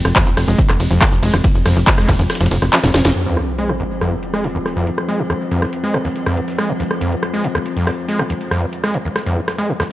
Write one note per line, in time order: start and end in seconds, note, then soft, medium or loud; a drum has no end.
0.00 3.14 F3 medium
0.00 3.14 C4 medium
0.05 0.14 F1 medium
0.05 cross-stick medium
0.05 closed hi-hat medium
0.05 shaker soft
0.16 0.28 F2 loud
0.16 kick loud
0.16 snare loud
0.16 clap loud
0.16 closed hi-hat loud
0.16 closed hi-hat medium
0.16 shaker soft
0.26 0.35 F1 medium
0.26 0.30 D#2 medium
0.26 closed hi-hat soft
0.26 closed hi-hat medium
0.26 shaker soft
0.37 0.46 F1 medium
0.37 cross-stick medium
0.37 closed hi-hat medium
0.37 open hi-hat medium
0.37 ride medium
0.37 shaker medium
0.48 0.56 F1 loud
0.48 0.60 G#3 medium
0.48 closed hi-hat medium
0.48 shaker soft
0.58 0.62 F2 medium
0.58 kick loud
0.58 closed hi-hat medium
0.58 closed hi-hat loud
0.58 shaker soft
0.69 0.78 F1 medium
0.69 0.73 D#2 medium
0.69 cross-stick medium
0.69 clap soft
0.69 closed hi-hat medium
0.69 shaker soft
0.80 0.88 F1 loud
0.80 closed hi-hat medium
0.80 open hi-hat loud
0.80 ride medium
0.80 shaker medium
0.91 0.99 F1 medium
0.91 1.03 F2 loud
0.91 closed hi-hat medium
0.91 shaker soft
1.01 1.05 D#2 medium
1.01 kick loud
1.01 cross-stick medium
1.01 snare loud
1.01 clap loud
1.01 closed hi-hat loud
1.01 open hi-hat medium
1.01 shaker soft
1.12 1.21 F1 medium
1.12 closed hi-hat medium
1.12 shaker soft
1.23 1.31 F1 loud
1.23 1.35 G#3 medium
1.23 closed hi-hat medium
1.23 open hi-hat medium
1.23 ride medium
1.23 shaker medium
1.34 1.42 F1 medium
1.34 1.37 F2 medium
1.34 cross-stick medium
1.34 closed hi-hat medium
1.34 shaker soft
1.44 1.48 D#2 medium
1.44 kick loud
1.44 snare soft
1.44 closed hi-hat medium
1.44 closed hi-hat loud
1.44 shaker soft
1.55 1.63 F1 medium
1.55 closed hi-hat medium
1.55 shaker soft
1.66 1.74 F1 loud
1.66 1.78 F2 loud
1.66 cross-stick medium
1.66 closed hi-hat medium
1.66 open hi-hat loud
1.66 ride medium
1.66 shaker medium
1.76 1.85 F1 medium
1.76 1.80 D#2 medium
1.76 closed hi-hat medium
1.76 shaker soft
1.87 kick loud
1.87 snare loud
1.87 clap loud
1.87 closed hi-hat medium
1.87 closed hi-hat loud
1.87 shaker soft
1.98 2.06 F1 medium
1.98 2.10 G#3 medium
1.98 cross-stick medium
1.98 closed hi-hat medium
1.98 shaker soft
2.08 2.17 F1 loud
2.08 2.12 F2 medium
2.08 kick medium
2.08 clap soft
2.08 closed hi-hat medium
2.08 open hi-hat medium
2.08 ride medium
2.08 shaker medium
2.19 2.28 F1 loud
2.19 2.23 D#2 medium
2.19 snare soft
2.19 closed hi-hat medium
2.19 shaker soft
2.30 cross-stick medium
2.30 snare medium
2.30 closed hi-hat medium
2.30 closed hi-hat loud
2.30 shaker soft
2.35 snare medium
2.35 closed hi-hat medium
2.41 2.49 F1 medium
2.41 2.47 F2 loud
2.41 snare medium
2.41 closed hi-hat medium
2.41 shaker soft
2.46 snare medium
2.46 closed hi-hat medium
2.51 2.60 F1 loud
2.51 2.57 F2 medium
2.51 closed hi-hat medium
2.51 open hi-hat loud
2.51 ride medium
2.51 shaker medium
2.62 2.71 F1 medium
2.62 2.66 F2 medium
2.62 cross-stick medium
2.62 snare soft
2.62 closed hi-hat medium
2.62 shaker soft
2.73 2.79 F3 medium
2.73 snare loud
2.73 snare medium
2.73 clap loud
2.73 closed hi-hat loud
2.73 open hi-hat medium
2.73 shaker soft
2.84 2.92 F1 medium
2.84 2.89 A#2 loud
2.84 snare medium
2.84 closed hi-hat medium
2.84 shaker soft
2.94 3.03 F1 loud
2.94 3.00 F2 medium
2.94 snare medium
2.94 snare soft
2.94 closed hi-hat medium
2.94 open hi-hat medium
2.94 ride medium
2.94 shaker medium
3.05 3.13 F1 loud
3.05 3.11 F2 loud
3.05 snare loud
3.05 snare medium
3.05 closed hi-hat medium
3.05 open hi-hat medium
3.05 shaker soft
3.15 9.92 F3 medium
3.15 9.92 C4 medium
3.15 closed hi-hat medium
3.15 sub drop medium
3.26 3.39 F2 loud
3.37 3.41 D#2 medium
3.37 cross-stick medium
3.37 snare soft
3.37 closed hi-hat medium
3.58 3.71 G#3 medium
3.58 closed hi-hat medium
3.69 3.73 F2 medium
3.69 cross-stick medium
3.69 closed hi-hat soft
3.80 3.83 D#2 medium
3.80 closed hi-hat medium
4.01 4.14 F2 loud
4.01 cross-stick medium
4.01 closed hi-hat medium
4.12 4.16 D#2 medium
4.23 closed hi-hat medium
4.34 4.46 G#3 medium
4.34 cross-stick medium
4.44 4.48 F2 medium
4.44 open hi-hat medium
4.55 4.58 D#2 medium
4.66 cross-stick medium
4.66 snare soft
4.66 closed hi-hat medium
4.76 4.88 F2 loud
4.87 4.91 D#2 medium
4.87 closed hi-hat medium
4.98 cross-stick medium
4.98 closed hi-hat soft
5.08 5.21 G#3 medium
5.08 closed hi-hat medium
5.19 5.23 F2 medium
5.30 5.33 D#2 medium
5.30 cross-stick medium
5.30 closed hi-hat medium
5.51 5.64 F2 loud
5.51 closed hi-hat medium
5.62 5.66 D#2 medium
5.62 cross-stick medium
5.62 snare soft
5.73 closed hi-hat medium
5.84 5.96 G#3 medium
5.84 snare soft
5.94 5.98 F2 medium
5.94 cross-stick medium
5.94 closed hi-hat medium
6.05 6.08 D#2 medium
6.05 snare soft
6.16 closed hi-hat medium
6.26 6.39 F2 loud
6.26 cross-stick medium
6.37 6.41 D#2 medium
6.37 closed hi-hat medium
6.48 snare medium
6.58 6.71 G#3 medium
6.58 cross-stick medium
6.58 closed hi-hat medium
6.69 6.73 F2 medium
6.80 6.83 D#2 medium
6.80 snare soft
6.80 closed hi-hat medium
6.91 cross-stick medium
7.01 7.14 F2 loud
7.01 closed hi-hat medium
7.12 7.16 D#2 medium
7.12 closed hi-hat soft
7.23 cross-stick medium
7.23 closed hi-hat medium
7.34 7.46 G#3 medium
7.44 7.48 F2 medium
7.44 closed hi-hat medium
7.55 7.58 D#2 medium
7.55 cross-stick medium
7.66 closed hi-hat medium
7.77 7.89 F2 loud
7.87 7.91 D#2 medium
7.87 cross-stick medium
7.87 open hi-hat medium
8.09 8.21 G#3 medium
8.09 snare soft
8.09 closed hi-hat medium
8.19 8.23 F2 medium
8.19 cross-stick medium
8.30 8.34 D#2 medium
8.30 closed hi-hat medium
8.41 closed hi-hat soft
8.51 8.64 F2 loud
8.51 cross-stick medium
8.51 closed hi-hat medium
8.62 8.66 D#2 medium
8.73 closed hi-hat medium
8.84 8.96 G#3 medium
8.84 cross-stick medium
8.94 8.98 F2 medium
8.94 closed hi-hat medium
9.05 9.09 D#2 medium
9.16 cross-stick medium
9.16 snare soft
9.16 closed hi-hat medium
9.26 9.38 F2 loud
9.26 closed hi-hat medium
9.37 9.41 D#2 medium
9.48 cross-stick medium
9.48 snare soft
9.48 closed hi-hat medium
9.58 9.71 G#3 medium
9.58 closed hi-hat medium
9.69 9.73 F2 medium
9.80 9.83 D#2 medium
9.80 cross-stick medium
9.80 snare soft
9.80 closed hi-hat medium